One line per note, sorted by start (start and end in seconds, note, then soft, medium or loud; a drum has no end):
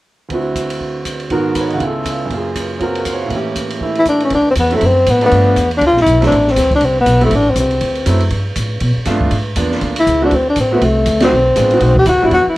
0.29 1.30 D2 soft
0.29 1.31 D3 soft
0.29 1.31 C4 soft
0.29 1.32 E4 soft
0.29 kick soft
0.29 ride soft
0.34 1.30 F#4 soft
0.55 kick soft
0.55 hi-hat pedal medium
0.55 ride medium
0.70 ride soft
0.81 kick soft
1.05 kick soft
1.05 hi-hat pedal soft
1.05 ride soft
1.20 ride soft
1.30 1.81 G#2 medium
1.30 1.81 D#3 soft
1.30 1.78 B3 soft
1.30 1.82 F#4 soft
1.30 1.82 A#4 medium
1.30 kick soft
1.30 ride soft
1.55 1.66 B4 soft
1.55 kick soft
1.55 hi-hat pedal medium
1.55 ride medium
1.61 1.71 C#5 soft
1.68 1.76 D#5 soft
1.68 ride soft
1.74 2.28 C#2 medium
1.74 2.27 C#3 soft
1.74 1.83 F#5 soft
1.80 2.30 B3 soft
1.80 2.31 E4 soft
1.80 kick soft
1.80 ride soft
1.84 2.33 F4 soft
1.84 2.34 A4 soft
2.06 kick soft
2.06 hi-hat pedal soft
2.06 ride medium
2.26 3.29 F#2 soft
2.26 3.30 C#3 soft
2.31 3.29 A#3 soft
2.31 3.33 F4 soft
2.31 kick soft
2.31 ride soft
2.37 3.34 G#4 soft
2.56 kick soft
2.56 hi-hat pedal soft
2.56 ride medium
2.79 3.30 F#3 soft
2.79 3.31 C4 soft
2.79 3.32 F#4 soft
2.79 2.97 A#4 soft
2.79 kick soft
2.79 ride soft
2.95 3.11 A#4 soft
2.95 ride soft
3.05 3.21 C5 soft
3.05 kick soft
3.05 hi-hat pedal soft
3.05 ride medium
3.15 3.27 C#5 soft
3.22 4.29 A2 soft
3.22 3.35 F5 soft
3.29 3.78 E3 soft
3.29 4.31 A#3 soft
3.29 kick soft
3.29 ride soft
3.34 4.33 C#4 soft
3.34 4.34 G4 soft
3.56 kick soft
3.56 hi-hat pedal soft
3.56 ride medium
3.70 ride soft
3.80 4.31 E3 soft
3.80 4.31 A3 soft
3.80 4.32 E4 soft
3.80 kick soft
3.95 4.07 E4 medium
3.95 ride soft
4.06 4.21 D4 medium
4.06 kick soft
4.06 hi-hat pedal soft
4.06 ride soft
4.20 ride soft
4.25 4.33 C#4 medium
4.30 4.56 D2 medium
4.30 kick soft
4.30 ride medium
4.35 4.47 D4 medium
4.51 4.54 C4 medium
4.56 4.81 E2 medium
4.56 4.77 B3 medium
4.56 kick soft
4.56 hi-hat pedal soft
4.56 ride medium
4.71 4.81 F#3 medium
4.71 4.81 A3 medium
4.71 4.81 C4 medium
4.71 4.81 E4 medium
4.71 ride soft
4.75 4.87 A3 medium
4.81 5.06 F#2 medium
4.81 kick soft
4.81 ride medium
4.85 5.12 C4 medium
5.07 5.31 A2 medium
5.07 5.23 B3 medium
5.07 kick soft
5.07 hi-hat pedal soft
5.07 ride medium
5.21 5.55 F3 medium
5.21 5.55 A3 medium
5.21 5.55 B3 medium
5.21 5.55 D4 medium
5.21 ride soft
5.26 5.70 B3 medium
5.32 5.56 G2 medium
5.32 kick soft
5.32 ride medium
5.56 5.81 E2 medium
5.56 kick soft
5.56 hi-hat pedal medium
5.56 ride medium
5.71 ride soft
5.77 5.84 D4 medium
5.81 5.91 D2 medium
5.81 kick soft
5.81 ride medium
5.86 5.98 F4 loud
5.91 5.98 B1 medium
5.97 6.06 G1 medium
5.97 snare soft
6.02 6.23 E4 loud
6.06 6.31 B1 medium
6.06 kick soft
6.06 hi-hat pedal soft
6.06 ride medium
6.21 6.30 F#3 medium
6.21 6.31 A3 medium
6.21 6.31 C4 medium
6.21 6.31 E4 medium
6.21 snare soft
6.21 ride soft
6.26 6.53 D4 medium
6.31 6.56 A1 medium
6.31 kick soft
6.31 ride soft
6.47 6.74 C4 medium
6.47 snare soft
6.56 6.80 D2 medium
6.56 kick soft
6.56 snare soft
6.56 hi-hat pedal medium
6.56 ride medium
6.71 kick medium
6.71 ride soft
6.75 6.86 D4 medium
6.81 7.05 C2 medium
6.81 kick soft
6.81 ride medium
6.85 6.98 C4 medium
7.01 7.22 B3 loud
7.06 7.31 B1 medium
7.06 kick soft
7.06 hi-hat pedal medium
7.06 ride medium
7.21 7.30 G3 medium
7.21 7.30 B3 medium
7.21 7.30 C4 medium
7.21 7.31 E4 medium
7.21 ride soft
7.25 7.37 A3 medium
7.31 7.55 A1 medium
7.31 kick soft
7.31 ride medium
7.35 7.51 D4 loud
7.50 7.58 C4 medium
7.56 7.80 C2 medium
7.56 kick soft
7.56 hi-hat pedal medium
7.56 ride medium
7.60 8.19 C4 medium
7.71 ride soft
7.81 8.06 D2 medium
7.81 kick soft
7.81 ride medium
7.95 ride soft
8.06 8.30 F#2 medium
8.06 8.20 F#3 medium
8.06 8.20 A3 medium
8.06 8.20 C4 medium
8.06 8.20 E4 medium
8.06 kick soft
8.06 hi-hat pedal medium
8.06 ride medium
8.20 ride soft
8.30 8.55 G2 medium
8.30 kick soft
8.30 ride medium
8.55 8.81 A2 medium
8.55 kick soft
8.55 hi-hat pedal medium
8.55 ride medium
8.80 8.95 B2 medium
8.80 kick soft
8.80 ride medium
8.97 muted upright bass stroke soft
9.05 9.31 G2 medium
9.05 9.31 A3 medium
9.05 9.31 B3 medium
9.05 9.31 D4 medium
9.05 9.32 F4 medium
9.05 kick soft
9.05 snare soft
9.05 hi-hat pedal soft
9.05 ride medium
9.21 kick soft
9.31 9.56 G#2 medium
9.31 kick soft
9.31 ride medium
9.56 9.81 E2 medium
9.56 9.93 A#3 soft
9.56 9.93 B3 soft
9.56 9.94 D4 soft
9.56 9.94 F4 medium
9.56 kick soft
9.56 hi-hat pedal medium
9.56 ride medium
9.71 snare soft
9.81 10.06 D2 medium
9.81 kick soft
9.81 ride medium
9.96 10.21 E4 medium
9.96 ride medium
10.06 10.31 C#2 medium
10.06 kick soft
10.06 hi-hat pedal medium
10.21 10.30 A3 medium
10.21 10.31 C4 medium
10.21 10.37 D4 medium
10.21 10.31 E4 medium
10.21 10.31 F#4 medium
10.31 10.56 D2 medium
10.31 kick soft
10.31 ride medium
10.35 10.48 C4 medium
10.50 10.58 D4 medium
10.56 10.81 A1 medium
10.56 kick soft
10.56 hi-hat pedal medium
10.56 ride medium
10.60 10.75 C4 medium
10.71 10.80 A3 medium
10.71 10.85 B3 medium
10.71 10.81 C4 medium
10.71 10.81 E4 medium
10.71 10.81 F#4 medium
10.81 11.06 C2 medium
10.81 11.22 A3 medium
10.81 kick soft
10.81 ride medium
11.06 11.31 D2 medium
11.06 kick soft
11.06 hi-hat pedal soft
11.06 ride medium
11.20 11.30 A3 medium
11.20 11.30 C4 medium
11.20 11.31 D#4 medium
11.20 11.31 F#4 medium
11.20 snare medium
11.20 ride medium
11.24 11.94 C4 medium
11.33 11.55 B1 medium
11.56 11.80 A1 medium
11.56 11.70 G#3 medium
11.56 11.70 B3 soft
11.56 11.70 D4 soft
11.56 11.71 F4 medium
11.56 kick soft
11.56 hi-hat pedal medium
11.56 ride medium
11.71 11.94 A3 soft
11.71 11.94 C4 soft
11.71 11.94 D#4 soft
11.71 11.95 F#4 medium
11.71 ride soft
11.80 12.06 B1 medium
11.80 kick soft
11.80 ride medium
11.96 12.05 G4 loud
11.96 kick medium
12.06 12.15 D#2 loud
12.06 12.10 E4 medium
12.06 12.26 F#4 medium
12.06 kick soft
12.06 hi-hat pedal medium
12.06 ride medium
12.15 12.22 B1 medium
12.22 12.30 A1 medium
12.22 12.31 G3 medium
12.22 12.31 B3 medium
12.22 12.31 D4 medium
12.22 12.33 E4 medium
12.22 12.31 F#4 medium
12.31 12.45 E2 medium
12.31 12.47 F#4 loud
12.31 kick soft
12.31 ride soft
12.47 12.57 E4 medium
12.47 muted upright bass stroke soft